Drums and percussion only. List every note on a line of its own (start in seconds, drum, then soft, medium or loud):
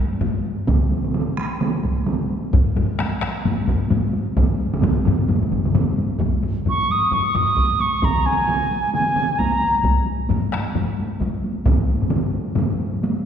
0.13 taiko high soft
0.21 taiko low-mid loud
0.21 taiko high medium
0.36 taiko high soft
0.45 taiko high medium
0.59 taiko high soft
0.67 taiko loud
0.67 taiko mid loud
0.67 taiko high medium
0.83 taiko high soft
0.91 taiko mid medium
0.91 taiko high medium
1.04 taiko mid medium
1.04 taiko high soft
1.14 taiko mid loud
1.14 taiko high medium
1.29 taiko high soft
1.37 taiko rim medium
1.37 taiko high medium
1.52 taiko high soft
1.61 taiko mid loud
1.61 taiko high medium
1.75 taiko high soft
1.84 taiko medium
1.84 taiko high soft
1.98 taiko high soft
2.06 taiko mid medium
2.06 taiko high medium
2.21 taiko high soft
2.31 taiko high medium
2.45 taiko high soft
2.53 taiko loud
2.53 taiko low-mid medium
2.53 taiko high medium
2.68 taiko high soft
2.75 taiko low-mid medium
2.75 taiko high medium
2.90 taiko high soft
2.99 taiko rim medium
2.99 taiko high medium
3.13 taiko high soft
3.22 taiko rim medium
3.22 taiko high medium
3.36 taiko high soft
3.45 taiko low-mid medium
3.45 taiko high medium
3.59 taiko high soft
3.68 taiko medium
3.68 taiko low-mid loud
3.68 taiko high medium
3.82 taiko high soft
3.90 taiko low-mid loud
3.90 taiko high medium
4.04 taiko high soft
4.13 taiko high medium
4.27 taiko high soft
4.37 taiko medium
4.37 taiko low-mid loud
4.37 taiko mid loud
4.37 taiko high medium
4.51 taiko high soft
4.60 taiko high medium
4.73 taiko low-mid medium
4.73 taiko mid loud
4.73 taiko high soft
4.82 taiko medium
4.82 taiko low-mid loud
4.82 taiko mid loud
4.82 taiko high medium
4.97 taiko high soft
5.05 taiko low-mid loud
5.05 taiko mid loud
5.05 taiko high medium
5.20 taiko high soft
5.29 taiko low-mid medium
5.29 taiko mid medium
5.29 taiko high medium
5.42 taiko low-mid medium
5.42 taiko mid medium
5.42 taiko high soft
5.51 taiko medium
5.51 taiko low-mid medium
5.51 taiko mid medium
5.51 taiko high medium
5.65 taiko low-mid medium
5.65 taiko mid medium
5.65 taiko high soft
5.75 taiko low-mid medium
5.75 taiko mid loud
5.75 taiko high medium
5.89 taiko high soft
5.98 taiko high medium
6.12 taiko high soft
6.20 taiko medium
6.20 taiko low-mid medium
6.20 taiko high medium
6.35 taiko high soft
6.43 taiko low-mid medium
6.43 taiko high soft
6.58 taiko high soft
6.66 taiko low-mid medium
6.66 taiko high medium
6.81 taiko high soft
6.90 taiko high soft
7.04 taiko high soft
7.12 taiko low-mid medium
7.12 taiko high medium
7.27 taiko high soft
7.35 taiko low-mid loud
7.35 taiko high soft
7.57 taiko medium
7.57 taiko high medium
7.72 taiko high soft
7.80 taiko high soft
7.94 taiko high soft
8.02 taiko medium
8.02 taiko mid medium
8.02 taiko high medium
8.16 taiko high soft
8.25 taiko mid medium
8.25 taiko high soft
8.39 taiko high soft
8.48 taiko mid medium
8.48 taiko high medium
8.61 taiko high soft
8.71 taiko high soft
8.85 taiko high soft
8.94 taiko mid medium
8.94 taiko high medium
9.08 taiko high soft
9.16 taiko mid medium
9.16 taiko high medium
9.39 taiko medium
9.39 taiko high medium
9.53 taiko high soft
9.62 taiko high medium
9.75 taiko high soft
9.84 taiko medium
9.84 taiko high medium
9.98 taiko high soft
10.07 taiko high medium
10.21 taiko high soft
10.29 taiko low-mid loud
10.29 taiko high medium
10.44 taiko high soft
10.52 taiko rim medium
10.52 taiko high medium
10.67 taiko high soft
10.75 taiko low-mid medium
10.75 taiko high medium
10.89 taiko high soft
10.98 taiko high medium
11.20 taiko medium
11.20 taiko high medium
11.35 taiko high soft
11.44 taiko high medium
11.58 taiko high soft
11.66 taiko loud
11.66 taiko low-mid medium
11.66 taiko mid loud
11.66 taiko high medium
11.80 taiko high soft
11.89 taiko high medium
12.02 taiko low-mid medium
12.02 taiko mid medium
12.02 taiko high soft
12.10 taiko low-mid medium
12.10 taiko mid loud
12.10 taiko high medium
12.25 taiko high soft
12.35 taiko high medium
12.49 taiko high soft
12.55 taiko low-mid loud
12.55 taiko mid medium
12.55 taiko high medium
12.72 taiko high soft
12.80 taiko high medium
12.94 taiko high medium
13.03 taiko high medium
13.16 taiko high soft